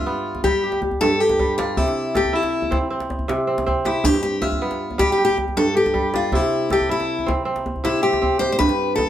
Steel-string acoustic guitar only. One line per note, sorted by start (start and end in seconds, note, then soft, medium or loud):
0.00 0.44 F4 medium
0.44 0.79 G4 medium
1.01 1.20 A4 medium
1.20 1.57 G4 medium
1.58 1.77 F4 medium
1.77 2.16 E4 medium
2.17 2.35 G4 medium
2.35 2.77 E4 medium
3.86 4.05 E4 medium
4.05 4.21 G4 medium
4.23 4.41 G4 medium
4.41 4.99 F4 medium
4.99 5.11 G4 medium
5.12 5.23 G4 medium
5.25 5.36 G4 medium
5.57 5.74 A4 loud
5.77 6.11 G4 medium
6.15 6.35 F4 medium
6.35 6.71 E4 medium
6.73 6.91 G4 medium
6.91 7.30 E4 medium
7.85 8.02 E4 medium
8.03 8.39 G4 medium
8.39 8.51 C5 loud
8.52 8.58 C5 medium
8.59 8.95 B4 loud
8.96 9.09 A4 medium